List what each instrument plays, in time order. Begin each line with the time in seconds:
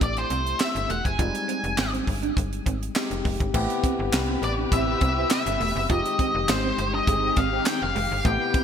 Already playing: tine electric piano A3 C4 E4 G4
0.01 fm bass A1, lead electric guitar D5, kick, closed hi-hat
0.17 lead electric guitar C5, closed hi-hat
0.30 fm bass C2, clean electric guitar C4, closed hi-hat
0.47 closed hi-hat
0.60 lead electric guitar E5, snare, clap
0.75 fm bass G1, closed hi-hat
0.89 fm bass E1, clean electric guitar A3, lead electric guitar F#5, closed hi-hat
1.05 fm bass F#1, lead electric guitar G#5, kick, closed hi-hat
1.18 fm bass F1, tine electric piano G3 G#3 C4 D#4, clean electric guitar F4, kick, closed hi-hat
1.34 muted clean electric guitar stroke, closed hi-hat
1.48 clean electric guitar C4, closed hi-hat
1.64 fm bass F1, closed hi-hat
1.77 fm bass G#1, snare, clap
1.93 clean electric guitar C4, closed hi-hat
2.07 fm bass G1, muted clean electric guitar stroke, kick, open hi-hat
2.23 clean electric guitar D4, closed hi-hat
2.37 fm bass G1, kick, closed hi-hat
2.53 closed hi-hat
2.66 fm bass G#1, clean electric guitar C4, kick, closed hi-hat
2.83 closed hi-hat
2.95 tine electric piano G#3 C4 D#4 G4, snare, clap
3.11 fm bass F1, closed hi-hat
3.25 fm bass F1, clean electric guitar G#3, kick, open hi-hat
3.40 fm bass G1, kick, closed hi-hat
3.54 fm bass A1, string section C3 G4 B4, clean electric guitar A3, tine electric piano B3 C4 E4 G4, kick, crash
3.70 muted clean electric guitar stroke, closed hi-hat
3.84 clean electric guitar C4, kick, closed hi-hat
3.99 fm bass G1
4.13 fm bass C2, snare, clap, closed hi-hat
4.28 clean electric guitar C4
4.42 fm bass A1, lead electric guitar D5, muted clean electric guitar stroke, closed hi-hat
4.58 clean electric guitar D4
4.72 fm bass A1, analog polysynth C4 E4 G4, lead electric guitar E5, kick, closed hi-hat
4.87 analog polysynth C4 E4 G4
5.01 fm bass C2, clean electric guitar C4, kick, closed hi-hat
5.17 analog polysynth C4 E4 G4
5.30 lead electric guitar E5, snare, clap, closed hi-hat
5.46 fm bass G1, closed hi-hat
5.60 fm bass E1, clean electric guitar A3, open hi-hat
5.76 fm bass F#1
5.89 fm bass F1, string section D#3 G#3 G4, tine electric piano G#3 C4 D#4 G4, clean electric guitar F4, lead electric guitar D#5, kick, closed hi-hat
6.05 muted clean electric guitar stroke, closed hi-hat
6.19 clean electric guitar C4, kick, closed hi-hat
6.35 fm bass F1
6.49 fm bass G#1, lead electric guitar C5, snare, clap, closed hi-hat
6.64 clean electric guitar C4
6.78 fm bass G1, muted clean electric guitar stroke, closed hi-hat
6.94 clean electric guitar D4, lead electric guitar D#5
7.07 fm bass G1, analog polysynth C4 D#4 G#4, kick, closed hi-hat
7.24 analog polysynth C4 D#4 G#4
7.37 fm bass G#1, clean electric guitar C4, lead electric guitar F5, kick, closed hi-hat
7.52 analog polysynth C4 D#4 G4
7.66 lead electric guitar G5, snare, clap, closed hi-hat
7.82 fm bass F1, lead electric guitar F5
7.96 fm bass F1, clean electric guitar G#3, open hi-hat
8.11 fm bass G1
8.24 fm bass A1, string section C3 B4, clean electric guitar A3, tine electric piano B3 C4 E4 G4, lead electric guitar G5, kick, closed hi-hat
8.40 muted clean electric guitar stroke
8.54 clean electric guitar C4, kick, closed hi-hat